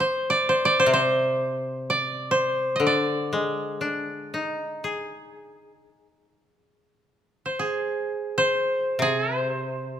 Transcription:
koto
Already playing: D5
0.00 C5
0.30 D5
0.49 C5
0.65 D5
0.80 C5
0.86 C3
0.93 C5
1.90 D5
2.31 C5
2.76 D#5
2.80 D3
2.87 D5
3.33 G#3
3.81 D4
4.34 D#4
4.84 G#4
7.46 C5
7.59 G#4
8.38 C5
8.99 C3 G#4
9.39 C5

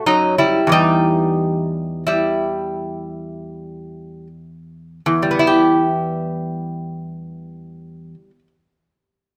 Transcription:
lute
0.06 F#2 F#3 D#4
0.38 G3 E4
0.67 E2 E3
0.72 G3 D#4
2.07 G3 E4
5.06 E2
5.22 G3
5.31 B3
5.39 E4
5.47 G4

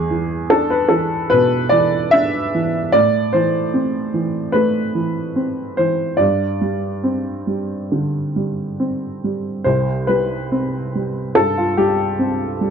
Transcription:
upright piano
Already playing: E2 G#4
0.10 E3
0.50 D4 A4
0.70 B4
0.88 E3 A4
1.30 B2 B4
1.69 E3 D5
2.11 D4 E5
2.55 E3
2.92 A2 D5
3.33 E3 C5
3.74 C4
4.14 E3
4.52 A3 B4
4.95 E3
5.36 C4
5.77 E3 C5
6.17 G2 D5
6.61 G3
7.04 C4
7.47 G3
7.92 D3
8.36 G3
8.80 C4
9.24 G3
9.64 C2 C5
10.07 G3 B4
10.52 C4
10.95 G3
11.35 G2 A4
11.58 F4
11.77 G3 G4
12.19 C4
12.61 G3

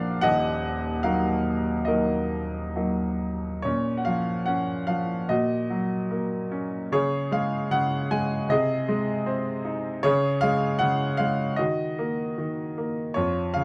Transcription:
grand piano
Already playing: A#1 A#2 F3 A#3 D4 D5 F5 F#5
0.21 D#1 D#2 D#5 F#5
1.03 F#3 A#3 D#4 A#4 F5
1.85 F#3 A#3 D#4 A#4 D#5
2.76 F#3 A#3 D#4
3.62 A#2 C#4 C#5
3.97 F#5
4.05 F3 F5
4.46 C#4 F#5
4.87 F3 F5
5.29 A#2 F#4 D#5
5.70 F#3
6.11 A#3
6.52 C#4
6.92 C#3 G#4 C#5
7.31 G#3 F5
7.71 C#3 F#5
8.11 G#3 G#5
8.49 C3 G#4 D#5
8.89 G#3
9.26 C4
9.65 D#4
10.03 C#3 G#4 C#5
10.41 G#3 F5
10.79 C#3 F#5
11.17 G#3 F5
11.56 D#3 F#4 D#5
11.99 A#3
12.38 D#3
12.78 A#3
13.14 F2 F4 C#5
13.54 C#3 F5

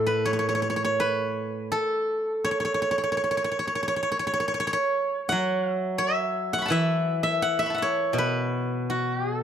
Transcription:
guzheng
Already playing: A2 A4
0.07 B4
0.25 C#5
0.33 C#5
0.39 C#5
0.49 C#5
0.55 C#5
0.62 C#5
0.70 C#5
0.76 C#5
0.85 C#5
1.00 B4
1.72 A4
2.44 C#5
2.51 C#5
2.60 C#5
2.65 C#5
2.74 C#5
2.82 C#5
2.91 C#5
2.98 C#5
3.04 C#5
3.12 C#5
3.17 C#5
3.24 C#5
3.31 C#5
3.37 C#5
3.44 C#5
3.51 C#5
3.59 C#5
3.67 C#5
3.75 C#5
3.83 C#5
3.88 C#5
3.96 C#5
4.03 C#5
4.12 C#5
4.19 C#5
4.27 C#5
4.34 C#5
4.40 C#5
4.48 C#5
4.54 C#5
4.60 C#5
4.67 C#5
4.73 C#5
5.29 F#3 F#5
5.72 E5
5.98 E5
6.53 F#5
6.58 B5 C#6
6.66 F#5 A5
6.70 E3 E5
7.23 E5
7.42 F#5
7.59 E5 C#6
7.66 B5
7.70 A5
7.74 E5 F#5
7.82 C#5
8.13 B2
8.18 B4
8.90 F#4
9.14 G4
9.26 G#4
9.38 A4

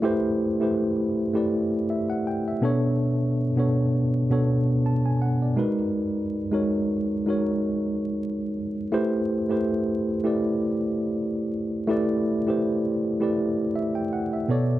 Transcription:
tine electric piano
Already playing: A3 E4 G4 B4 D5
0.02 A3 E4 G4 B4 C5
0.60 A3 E4 G4 B4 C5
1.34 A3 E4 G4 B4 D5
1.90 E5
2.10 F#5
2.27 G5
2.48 E5
2.61 B2 B3 D4 A4 C#5
3.56 B2 B3 D4 A4 C#5
4.30 B2 B3 D4 A4 C#5
4.86 A5
5.06 G#5
5.22 F#5
5.42 D5
5.56 G#3 D#4 F#4 A#4 B4
6.51 G#3 D#4 F#4 A#4 C#5
7.26 G#3 D#4 F#4 A#4 C#5
8.92 A3 E4 G4 B4 C5
9.49 A3 E4 G4 B4 C5
10.24 A3 E4 G4 B4 D5
11.87 A3 E4 G4 B4 D5
12.46 A3 E4 G4 B4 C5
13.20 A3 E4 G4 B4 D5
13.76 E5
13.95 G5
14.13 F#5
14.33 E5
14.48 B2 B3 A4 C#5 D5

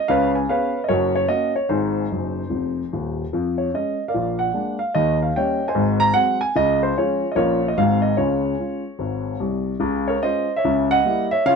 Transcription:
grand piano
0.08 C#2 C#3 B4 C#5 F5
0.35 G#5
0.49 B3 C#4 G#4 B4 C#5 F5
0.84 D#5
0.89 F#1 F#2 F#4 A#4 C#5
1.15 C#5
1.28 A#3 C#4 F#4 D#5
1.56 C#5
1.69 G#1 G#2 D#4 G#4 C5
2.12 F#1 F#2
2.50 F1 F2
2.93 D#1 D#2
3.33 F2 F3
3.58 C#5
3.74 G#3 C#4 D#5
4.08 A#4 D5 F5
4.14 A#1 A#2
4.39 F#5
4.53 G#3 A#3 D4
4.79 F5
4.95 D#2 D#3 D#5
5.22 F5
5.36 G3 A#3 C#4 C#5 D#5 G5
5.68 C5 D#5 G#5
5.75 G#1 G#2
6.00 A#5
6.14 F#3 G#3 C4 F#5
6.41 G#5
6.55 C#2 C#3 D#5
6.83 C5
6.98 F3 G#3 C#4 F4 G#4 C#5
7.31 F3 D#5
7.36 A#1 A#2 A#3 C#4 F4 A#4 C#5
7.68 D#5
7.77 G#1 G#2 G#3 C4 F#4 F5
8.02 D#5
8.17 C#2 C#3 F4 G#4 C#5
8.59 G#3 C#4 F4
8.99 G#1 G#2
9.40 C2 C3
9.79 C#2 C#3
10.08 A#4 C#5
10.22 G#3 C#4 F4 C5 D#5
10.56 C#5 E5
10.64 C#2 C#3
10.91 D#5 F#5
11.05 G3 A#3 E4
11.31 C#5 E5
11.46 C#3 F4 C#5 F5

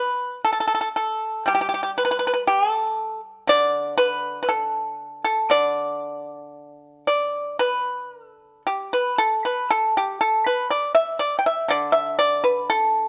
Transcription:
pipa
Already playing: B4
0.45 A4
0.53 A4
0.60 A4
0.68 A4
0.75 A4
0.81 A4
0.96 A4
1.46 G3 G4
1.55 G4
1.61 G4
1.69 G4
1.74 G4
1.83 G4
1.98 B4
2.05 B4
2.11 B4
2.19 B4
2.27 B4
2.34 B4
2.47 G4
2.69 A4
3.47 D3 D5
3.98 B4
4.43 B4
4.49 A4
5.24 A4
5.50 D3 D5
7.07 D5
7.59 B4
8.12 A#4
8.24 A4
8.67 G4
8.93 B4
9.18 A4
9.45 B4
9.71 A4
9.97 G4
10.21 A4
10.46 B4
10.70 D5
10.95 E5
11.19 D5
11.39 G5
11.46 E5
11.68 D3 D5
11.92 E5
12.19 D5
12.44 B4
12.70 A4

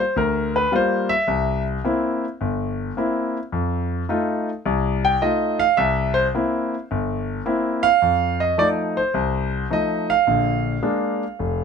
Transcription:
grand piano
0.00 C5
0.16 D2 A#4
0.56 B4
0.72 G3 A#3 F4 C5
1.09 E5
1.28 C2
1.84 A#3 C4 E4
2.41 G1
2.97 A#3 C4 E4
3.52 F2
4.09 A3 D#4 F4
4.66 C2
5.05 G5
5.22 A3 D#4 F4 D#5
5.60 F5
5.77 C2 E5
6.14 C5
6.35 A#3 C4 E4
6.91 G1
7.46 A#3 C4 E4
7.83 F5
8.02 F2
8.40 D#5
8.58 F3 A3 D#4 D5
8.97 C5
9.14 C2
9.70 F3 A3 D#4 D#5
10.10 F5
10.27 A#1 D3
10.83 G#3 A#3 D4
11.39 F1

